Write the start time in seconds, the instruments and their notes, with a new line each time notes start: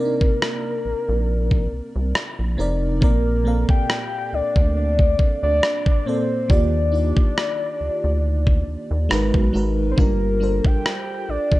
Already playing: fm electric piano C3 C4 D#4, soft synth lead A#4
0.00 fm electric piano D4 A#4 D5
0.05 fm electric piano D#4
0.21 analog synth bass A#1, kick
0.42 cross-stick
0.85 analog synth bass A#1
1.09 analog synth bass A#1
1.51 kick
1.72 analog synth bass C2
1.96 analog synth bass C2
2.15 cross-stick
2.39 analog synth bass A#1
2.57 analog synth bass F1, fm electric piano C3 C4 D#4 A#4 D5
3.00 analog synth bass A#1, fm electric piano A#2 A#3 C4 A#4 D5, soft synth lead A#4, kick
3.44 fm electric piano A#2 A#3 C4 A4 F5
3.69 analog synth bass D2, soft synth lead G5, kick
3.90 cross-stick
4.33 analog synth bass D2, soft synth lead D5
4.56 analog synth bass D2, kick
4.77 soft synth lead D5
4.99 kick
5.19 analog synth bass D2, kick
5.43 analog synth bass D2, soft synth lead D5
5.63 cross-stick
5.86 kick
6.05 fm electric piano A#2 A#3 C4 A4 D5, soft synth lead C5
6.48 analog synth bass D#2, fm electric piano D#3 A#3 F4 G4, soft synth lead D5, kick
6.52 fm electric piano D5
6.92 fm electric piano A#3 D#4 F4 G4 D5
7.17 analog synth bass D2, kick
7.38 cross-stick
7.81 analog synth bass D2
8.04 analog synth bass D2
8.47 kick
8.68 analog synth bass D#2
8.91 analog synth bass D#2
9.09 analog synth bass G#1, fm electric piano G#3 D#4 F#4 A#4, cross-stick
9.13 fm electric piano B4
9.34 analog synth bass B1, kick
9.53 analog synth bass G#1, fm electric piano G#3 D#4 F#4 A#4 B4
9.91 soft synth lead C5
9.96 analog synth bass G1, fm electric piano G3 D4 F4 G4 A#4, soft synth lead A#4, kick
10.40 fm electric piano G3 D4 F4 A4 C5
10.65 analog synth bass A#1, soft synth lead G5, kick
10.86 cross-stick
11.29 analog synth bass A#1, soft synth lead D5
11.52 analog synth bass A#1, kick